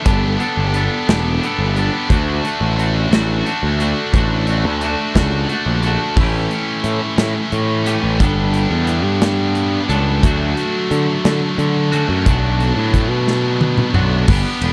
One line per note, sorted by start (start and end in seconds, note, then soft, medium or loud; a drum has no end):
0.04 0.36 G1 loud
0.04 0.38 B3 medium
0.04 0.39 D4 loud
0.04 0.38 G4 loud
0.04 0.40 A4 medium
0.04 kick loud
0.04 closed hi-hat medium
0.39 0.74 B3 medium
0.39 0.75 D4 medium
0.39 0.73 G4 medium
0.39 0.76 A4 medium
0.39 closed hi-hat medium
0.57 0.87 G1 medium
0.74 1.08 B3 medium
0.74 1.09 D4 medium
0.74 1.06 G4 medium
0.74 1.10 A4 medium
0.74 closed hi-hat medium
1.08 1.38 E1 medium
1.08 1.43 B3 medium
1.08 1.45 D4 medium
1.08 1.41 G4 medium
1.08 1.46 A4 medium
1.08 snare loud
1.08 closed hi-hat medium
1.41 1.76 B3 medium
1.41 1.75 D4 medium
1.41 1.74 G4 medium
1.41 closed hi-hat medium
1.46 1.78 D4 medium
1.46 1.79 A4 medium
1.59 1.89 G1 medium
1.76 2.09 B3 medium
1.76 2.11 D4 medium
1.76 2.08 G4 medium
1.76 2.12 A4 medium
1.76 closed hi-hat medium
2.10 2.40 D2 medium
2.10 2.45 A3 medium
2.10 2.46 D4 medium
2.10 2.46 F#4 loud
2.10 kick loud
2.10 closed hi-hat medium
2.45 2.78 A3 medium
2.45 2.79 D4 medium
2.45 2.79 F#4 medium
2.45 closed hi-hat medium
2.61 3.06 A1 medium
2.78 3.13 A3 medium
2.78 3.12 D4 medium
2.78 3.13 F#4 medium
2.78 closed hi-hat medium
3.11 3.41 A1 medium
3.11 3.47 A3 medium
3.11 3.47 D4 medium
3.11 3.47 F#4 loud
3.11 snare loud
3.11 closed hi-hat medium
3.46 3.81 A3 medium
3.46 3.81 D4 medium
3.46 3.81 F#4 medium
3.46 closed hi-hat medium
3.63 3.93 D2 medium
3.80 4.15 A3 medium
3.80 4.15 D4 medium
3.80 4.16 F#4 medium
3.80 closed hi-hat medium
4.13 4.65 A1 medium
4.13 4.48 A3 medium
4.13 4.49 D4 medium
4.13 4.49 F#4 medium
4.13 kick loud
4.13 closed hi-hat medium
4.47 4.82 A3 medium
4.47 4.83 D4 medium
4.47 4.84 F#4 medium
4.47 closed hi-hat medium
4.65 4.94 D2 medium
4.81 5.15 A3 medium
4.81 5.16 D4 medium
4.81 5.17 F#4 medium
4.81 closed hi-hat medium
5.15 5.45 C#2 medium
5.15 5.51 A3 medium
5.15 5.52 D4 medium
5.15 5.52 F#4 medium
5.15 kick medium
5.15 snare loud
5.15 closed hi-hat medium
5.48 5.82 A3 medium
5.48 5.83 D4 medium
5.48 5.83 F#4 medium
5.48 closed hi-hat medium
5.52 5.84 A3 medium
5.52 5.85 D4 medium
5.52 5.86 F#4 medium
5.66 5.96 A#1 medium
5.83 6.16 A3 medium
5.83 6.17 D4 medium
5.83 closed hi-hat medium
5.87 6.17 F#4 medium
6.16 6.47 A1 medium
6.16 7.86 E3 medium
6.16 kick loud
6.16 crash loud
6.21 7.90 A3 medium
6.21 7.87 C#4 medium
6.21 7.86 G4 medium
6.51 closed hi-hat medium
6.84 6.99 A2 medium
6.84 closed hi-hat medium
7.18 7.33 A2 medium
7.18 snare loud
7.18 closed hi-hat medium
7.52 7.97 A2 medium
7.52 closed hi-hat medium
7.84 8.19 E3 medium
7.84 8.21 A3 medium
7.84 8.17 C#4 medium
7.84 8.19 G4 medium
7.84 closed hi-hat medium
7.89 8.20 E3 medium
7.89 8.22 A3 medium
7.89 8.19 C#4 medium
8.04 8.18 A1 medium
8.20 8.65 G1 loud
8.20 9.87 G3 medium
8.20 9.88 B3 medium
8.20 9.91 D4 medium
8.20 kick loud
8.20 closed hi-hat medium
8.24 9.89 A4 medium
8.54 closed hi-hat medium
8.71 9.04 E2 medium
8.87 closed hi-hat medium
9.04 9.79 G2 medium
9.22 snare loud
9.22 closed hi-hat loud
9.55 closed hi-hat medium
9.89 10.19 C#2 medium
9.89 10.23 B3 medium
9.89 11.93 D4 medium
9.89 10.25 A4 medium
9.89 closed hi-hat medium
9.94 10.21 G3 medium
10.21 10.53 D2 medium
10.21 11.90 F#3 medium
10.21 11.90 A3 medium
10.21 kick loud
10.21 closed hi-hat loud
10.26 11.91 D4 medium
10.26 11.91 F#4 loud
10.57 closed hi-hat medium
10.91 11.06 D3 medium
10.91 closed hi-hat medium
11.25 11.40 D3 medium
11.25 snare loud
11.25 closed hi-hat medium
11.58 12.03 D3 medium
11.58 closed hi-hat medium
11.91 12.25 A3 medium
11.91 12.25 C#4 medium
11.91 12.28 D4 medium
11.91 12.24 F#4 medium
11.91 closed hi-hat medium
11.96 12.26 F#3 medium
12.09 12.24 F#2 medium
12.26 12.71 B1 loud
12.26 13.93 F#3 medium
12.26 13.93 A3 medium
12.26 13.94 B3 loud
12.26 13.94 D4 loud
12.26 kick loud
12.26 closed hi-hat medium
12.30 13.94 F#4 medium
12.60 closed hi-hat medium
12.76 13.10 A2 loud
12.94 kick medium
12.94 closed hi-hat medium
13.10 13.85 B2 loud
13.28 snare medium
13.61 high tom medium
13.78 mid tom medium
13.94 14.24 B1 medium
13.94 14.28 F#3 medium
13.94 14.27 B3 medium
13.94 14.28 D4 medium
13.94 14.27 F#4 medium
13.94 mid tom medium
13.99 14.29 A3 medium
14.28 14.43 G1 medium
14.28 14.63 B3 medium
14.28 14.64 D4 medium
14.28 14.61 G4 loud
14.28 kick loud
14.28 crash loud
14.61 14.73 E1 medium
14.61 14.73 B3 medium
14.61 14.73 D4 medium
14.61 14.73 G4 medium
14.61 ride medium